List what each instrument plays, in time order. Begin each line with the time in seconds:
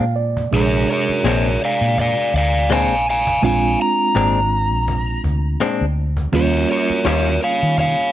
Already playing: reed electric piano G#3 C4 D4 F4
0.00 fingered electric bass A#2, reed electric piano F5, cajon slap
0.16 reed electric piano D5
0.37 cajon bass
0.51 fingered electric bass A#1, reed electric piano C3 G#3 D4 G#4, electric slide guitar A#4, cajon bass
0.56 electric slide guitar C#5
0.89 electric slide guitar A#4 C#5, cajon slap
1.09 muted fingered electric bass stroke, cajon slap
1.24 fingered electric bass A#1, clean electric guitar A#2 G#3 C4 D4, electric slide guitar A#4 C#5, cajon slap
1.46 cajon slap
1.65 electric slide guitar D5 F5
1.81 fingered electric bass A#2
1.98 electric slide guitar D5 F5, cajon bass, cajon slap
2.19 cajon slap
2.34 fingered electric bass D2, electric slide guitar D5 F5, cajon slap
2.55 cajon slap
2.70 clean electric guitar A#2 G#3 C4 D4, electric slide guitar F5 G#5, cajon slap
2.91 fingered electric bass A#1
3.10 electric slide guitar F5 G#5
3.27 cajon bass
3.42 fingered electric bass A#1, reed electric piano G#3 C4 D4 F4, electric slide guitar F5 G#5, cajon bass
3.79 electric slide guitar A#5, cajon slap
4.00 cajon slap
4.15 fingered electric bass G#1, clean electric guitar A#2 G#3 C4 D4, cajon slap
4.52 cajon slap
4.73 fingered electric bass A#1, cajon slap
4.88 cajon bass
5.24 fingered electric bass D2, cajon bass
5.44 cajon slap
5.60 clean electric guitar A#2 G#3 C4 D4, cajon slap
5.80 fingered electric bass D2, cajon slap
6.17 cajon bass, cajon slap
6.32 fingered electric bass D#2, reed electric piano G3 A#3 C#4 F4, electric slide guitar A#4 C#5, cajon bass
6.69 electric slide guitar A#4 C#5, cajon slap
6.89 muted fingered electric bass stroke, cajon slap
7.05 fingered electric bass D#2, clean electric guitar D#3 G3 C#4 F4, electric slide guitar A#4 C#5, cajon slap
7.43 electric slide guitar C#5 F5
7.63 fingered electric bass D#3
7.78 electric slide guitar C#5 F5, cajon bass
7.98 cajon slap
8.00 cajon slap